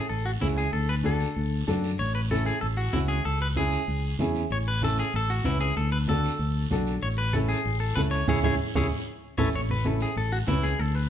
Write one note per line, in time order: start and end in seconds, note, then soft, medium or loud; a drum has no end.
0.09 0.35 A1 medium
0.09 0.25 A4 medium
0.09 long guiro medium
0.26 0.31 F#4 medium
0.41 0.67 C#2 medium
0.41 0.63 C#4 medium
0.41 0.64 E4 medium
0.41 0.46 E4 medium
0.41 0.64 G#4 medium
0.41 high conga medium
0.41 short guiro medium
0.57 0.72 G#4 medium
0.57 short guiro medium
0.73 1.23 D2 medium
0.73 0.89 A4 medium
0.73 long guiro medium
0.89 0.94 B4 medium
1.03 1.26 D4 medium
1.03 1.26 F#4 medium
1.03 1.27 A4 medium
1.03 1.64 A4 medium
1.03 high conga medium
1.03 short guiro medium
1.20 short guiro medium
1.36 1.62 D2 medium
1.36 long guiro medium
1.67 1.93 F#2 medium
1.67 1.89 D4 medium
1.67 1.90 F#4 medium
1.67 1.90 A4 medium
1.67 high conga medium
1.67 short guiro medium
1.84 short guiro medium
1.99 2.50 A1 medium
1.99 2.14 C#5 loud
1.99 long guiro medium
2.15 2.20 B4 medium
2.31 2.53 C#4 medium
2.31 2.53 E4 medium
2.31 2.46 A4 medium
2.31 2.53 A4 medium
2.31 high conga medium
2.31 short guiro medium
2.46 2.61 G#4 medium
2.46 short guiro medium
2.61 2.88 A1 medium
2.61 2.66 A4 medium
2.61 long guiro medium
2.77 2.94 F#4 medium
2.93 3.19 C#2 medium
2.93 3.16 C#4 medium
2.93 2.98 E4 medium
2.93 3.16 E4 medium
2.93 3.16 F#4 medium
2.93 high conga medium
2.93 short guiro medium
3.08 3.25 G#4 medium
3.08 short guiro medium
3.25 3.76 C#2 medium
3.25 3.40 A4 medium
3.25 long guiro medium
3.42 3.47 B4 medium
3.56 3.79 C#4 medium
3.56 3.79 E4 medium
3.56 4.16 G#4 medium
3.56 3.79 G#4 medium
3.56 high conga medium
3.56 short guiro medium
3.72 short guiro medium
3.88 4.13 C#2 medium
3.88 long guiro medium
4.19 4.44 E2 medium
4.19 4.41 C#4 medium
4.19 4.42 E4 medium
4.19 4.42 G#4 medium
4.19 high conga medium
4.19 short guiro medium
4.35 short guiro medium
4.50 5.01 A1 medium
4.50 4.57 C#5 loud
4.50 long guiro medium
4.68 4.83 B4 medium
4.82 5.04 C#4 medium
4.82 5.04 E4 medium
4.82 5.05 A4 medium
4.82 4.98 A4 medium
4.82 high conga medium
4.82 short guiro medium
4.97 5.13 G#4 medium
4.97 short guiro medium
5.13 5.39 A1 medium
5.13 5.30 A4 loud
5.13 long guiro medium
5.30 5.44 F#4 medium
5.44 5.70 C#2 medium
5.44 5.67 C#4 medium
5.44 5.67 E4 medium
5.44 5.60 E4 medium
5.44 5.68 B4 medium
5.44 high conga medium
5.44 short guiro medium
5.60 5.75 G#4 medium
5.60 short guiro medium
5.77 6.27 D2 medium
5.77 5.92 A4 medium
5.77 long guiro medium
5.92 5.97 B4 medium
6.08 6.30 D4 medium
6.08 6.31 F#4 medium
6.08 6.67 A4 medium
6.08 6.31 A4 medium
6.08 high conga medium
6.08 short guiro medium
6.24 short guiro medium
6.39 6.64 D2 medium
6.39 long guiro medium
6.70 6.96 B1 medium
6.70 6.93 D4 medium
6.70 6.93 F#4 medium
6.70 6.94 A4 medium
6.70 high conga medium
6.70 short guiro medium
6.87 short guiro medium
7.02 7.53 A1 medium
7.02 7.08 C#5 medium
7.02 long guiro medium
7.18 7.34 B4 medium
7.33 7.56 C#4 medium
7.33 7.56 E4 medium
7.33 7.38 A4 medium
7.33 7.56 A4 medium
7.33 high conga medium
7.33 short guiro medium
7.49 7.80 G#4 medium
7.49 short guiro medium
7.65 7.91 A1 medium
7.65 long guiro medium
7.80 7.95 A4 medium
7.95 8.22 C#2 medium
7.95 8.19 C#4 medium
7.95 8.19 E4 medium
7.95 8.19 A4 medium
7.95 8.00 B4 medium
7.95 high conga medium
7.95 short guiro medium
8.11 8.26 C#5 medium
8.11 short guiro medium
8.27 8.40 C#2 medium
8.27 8.38 C#4 medium
8.27 8.38 E4 medium
8.27 8.39 E4 medium
8.27 8.38 G#4 medium
8.27 8.39 G#4 medium
8.27 8.39 C#5 medium
8.27 low conga medium
8.27 long guiro medium
8.43 8.56 C#2 medium
8.43 8.54 C#4 medium
8.43 8.54 E4 medium
8.43 8.53 G#4 loud
8.43 8.54 G#4 medium
8.43 8.54 C#5 medium
8.43 low conga medium
8.43 long guiro medium
8.75 8.87 C#2 medium
8.75 8.85 C#4 medium
8.75 8.85 E4 medium
8.75 8.86 E4 medium
8.75 8.85 G#4 medium
8.75 8.86 G#4 medium
8.75 8.86 C#5 medium
8.75 low conga loud
8.75 long guiro loud
9.37 9.50 A1 medium
9.37 9.48 C#4 medium
9.37 9.48 E4 medium
9.37 9.48 A4 medium
9.37 9.48 B4 medium
9.37 9.48 C#5 medium
9.37 low conga medium
9.37 long guiro medium
9.54 10.04 A1 medium
9.54 9.60 C#5 loud
9.54 long guiro medium
9.70 9.87 B4 medium
9.70 high conga medium
9.85 10.07 C#4 medium
9.85 10.07 E4 medium
9.85 10.07 A4 medium
9.85 10.02 A4 medium
9.85 high conga medium
9.85 short guiro medium
10.00 10.16 G#4 medium
10.00 short guiro medium
10.16 10.42 A1 medium
10.16 10.32 A4 loud
10.16 long guiro medium
10.32 10.37 F#4 medium
10.47 10.73 C#2 medium
10.47 10.69 C#4 medium
10.47 10.70 E4 medium
10.47 10.64 E4 medium
10.47 10.70 B4 medium
10.47 high conga medium
10.47 short guiro medium
10.63 10.79 G#4 medium
10.63 short guiro medium
10.78 11.09 D2 medium
10.78 10.95 A4 medium
10.78 long guiro medium
10.95 11.09 B4 medium